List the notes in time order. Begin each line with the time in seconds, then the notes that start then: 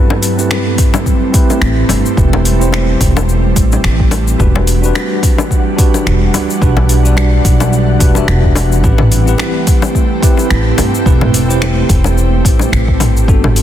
Already playing: G3 A3 C4 E4 G4 B4
0.10 high bongo
0.23 open hi-hat, cabasa
0.37 C4 E4 G4 B4, cabasa
0.51 finger snap, high bongo, cabasa
0.78 kick, open hi-hat, cabasa
0.94 high bongo, cabasa
1.06 kick, cabasa
1.33 C4 E4 G4 B4, kick, open hi-hat, cabasa
1.50 high bongo, cabasa
1.61 A1, finger snap, cabasa
1.89 G1, open hi-hat, high bongo, cabasa
2.06 cabasa
2.17 E1 C4 E4 G4 B4, kick, cabasa
2.33 high bongo
2.45 open hi-hat, cabasa
2.59 C4 E4 G4 C5, cabasa
2.73 finger snap, high bongo, cabasa
3.01 E1, kick, open hi-hat, cabasa
3.17 high bongo, cabasa
3.29 cabasa
3.56 A1, kick, open hi-hat, cabasa
3.72 high bongo, cabasa
3.84 A1, finger snap, cabasa
4.00 kick
4.11 open hi-hat, high bongo, cabasa
4.28 cabasa
4.39 E1 E3 D4 F#4 G4 B4 F#5, kick, cabasa
4.55 high bongo
4.67 open hi-hat, cabasa
4.82 D4 F#4 G4 B4, cabasa
4.95 finger snap, high bongo, cabasa
5.23 kick, open hi-hat, cabasa
5.38 high bongo, cabasa
5.51 kick, cabasa
5.76 D4 F#4 G4 B4, kick, open hi-hat, cabasa
5.94 high bongo, cabasa
6.06 E1, finger snap, cabasa
6.34 D2, open hi-hat, high bongo, cabasa
6.50 cabasa
6.61 B1 D4 F#4 G4 B4, kick, cabasa
6.77 high bongo
6.89 open hi-hat, cabasa
7.03 D4 F#4 G4 D5, cabasa
7.17 finger snap, high bongo, cabasa
7.45 B1, kick, open hi-hat, cabasa
7.60 high bongo, cabasa
7.73 cabasa
7.99 E1 D4 F#4 G4 B4, kick, open hi-hat, cabasa
8.14 D4 F#4 G4 E5, high bongo, cabasa
8.28 E1, finger snap, cabasa
8.44 kick
8.55 open hi-hat, high bongo, cabasa
8.72 cabasa
8.83 A1 A3 C4 E4 G4 B4, kick, cabasa
8.98 mid tom, high bongo
9.12 open hi-hat, cabasa
9.26 C4 E4 G4 B4, cabasa
9.38 finger snap, high bongo, cabasa
9.67 kick, open hi-hat, cabasa
9.82 high bongo, cabasa
9.95 kick, cabasa
10.21 C4 E4 G4 B4, kick, open hi-hat, cabasa
10.37 high bongo, cabasa
10.50 A1, finger snap, cabasa
10.78 G1, open hi-hat, high bongo, cabasa
10.95 cabasa
11.05 E1 C4 E4 G4 B4, kick, cabasa
11.21 mid tom, high bongo
11.34 open hi-hat, cabasa
11.48 C4 E4 G4 C5, cabasa
11.62 finger snap, high bongo, cabasa
11.89 E1, kick, open hi-hat, cabasa
12.04 high bongo, cabasa
12.18 cabasa
12.45 A1, kick, open hi-hat, cabasa
12.59 high bongo, cabasa
12.72 A1, finger snap, cabasa
12.88 kick
13.00 mid tom, open hi-hat, high bongo, cabasa
13.17 cabasa
13.28 G1 G3 B3 D4 F#4 A4 B4, kick, cabasa
13.44 mid tom, high bongo
13.56 open hi-hat, cabasa